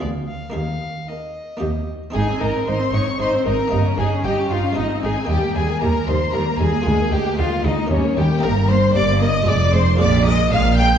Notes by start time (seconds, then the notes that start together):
Already playing: B3 F4
0.00 D2 B3 F4 G#4 D5
0.27 F5
0.50 A#3 D#4 G#4
0.54 D#2 F5
1.08 A#3 D#4 G#4 D#5
1.57 A#3 D#4 G4
1.61 D#2 A#3 D#4 G4
2.10 C4 D#4 G#4
2.15 G#1 G#2 D#4 G#4 G#5
2.28 C4
2.41 G#1 G#2 D#4 A#4 A#5
2.55 C4
2.67 G#1 G#2 D#4 C5 C6
2.81 C4
2.94 G#1 G#2 D#4 C#5 C#6
3.07 C4
3.20 G#1 G#2 D#4 C5 C6
3.33 C4
3.46 G#1 G#2 D#4 A#4 A#5
3.59 C4
3.68 A#3 C#4 D#4
3.72 G1 G2 D#4
3.86 C#4
3.98 G1 G2 D#4 G#4 G#5
4.13 C#4
4.25 G1 G2 D#4 G4 G5
4.39 C#4
4.50 G1 G2 D#4 F4 F5
4.65 C#4
4.73 G#3 C4 D#4 D#5
4.77 G#1 G#2 D#4
4.91 C4
5.03 G#1 G#2 D#4 G#4 G#5
5.17 C4
5.25 A#3 D#4
5.29 D#2 G3 G4 G5
5.43 A#3
5.56 D#2 G3 G#4 G#5
5.69 A#3
5.82 D#2 G3 A#4 A#5
5.95 A#3
6.08 D#2 G3 C5 C6
6.22 A#3
6.33 D#2 G3 A#4 A#5
6.47 A#3
6.60 D#2 G3 G#4 G#5
6.73 A#3
6.82 A#3 F4
6.86 D2 G#3
6.99 A#3
7.12 D2 G#3 G4 G5
7.26 A#3
7.38 D2 G#3 F4 F5
7.52 A#3
7.64 D2 G#3 D#4 D#5
7.78 A#3
7.87 A#3 D#4 C#5
7.91 D#2 G3 C#4
8.04 A#3
8.17 D#2 G3 G4 G5
8.30 A#3
8.39 G2 A#3 D#4
8.43 G1 G2 A#3 A#4 A#5
8.69 A#3 C5 C6
8.95 G1 G2 A#3 D5 D6
9.22 A#3 D#5 D#6
9.43 G#3 F4 G#4
9.48 F1 F2 G#3 D5 D6
9.73 G#3 C5 C6
9.96 A#3 F4 G#4
10.00 A#1 A#2 G#3 D5 D6
10.26 G#3 D#5 D#6
10.52 A#1 A#2 G#3 F5 F6
10.79 G#3 G5 G6